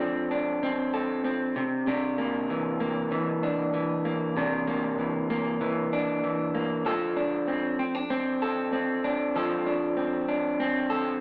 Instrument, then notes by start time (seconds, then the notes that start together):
clean electric guitar
Already playing: F3 D4 A4
0.00 C4
0.31 D4
0.63 C4
0.94 A4
1.24 C4
1.56 C3
1.87 C3 D4
2.18 A#3
2.50 E3
2.80 A#3
3.12 E3
3.43 D4
3.74 E3
4.05 A#3
4.37 C3 D4
4.67 A#3
4.99 E3
5.30 A#3
5.61 E3
5.93 D4
6.24 E3
6.55 A#3
6.85 F3 A4
7.17 D4
7.48 C4
7.79 C4
7.95 D4
8.10 C4
8.42 A4
8.73 C4
9.04 D4
9.36 F3 A4
9.66 D4
9.97 C4
10.28 D4
10.60 C4
10.90 A4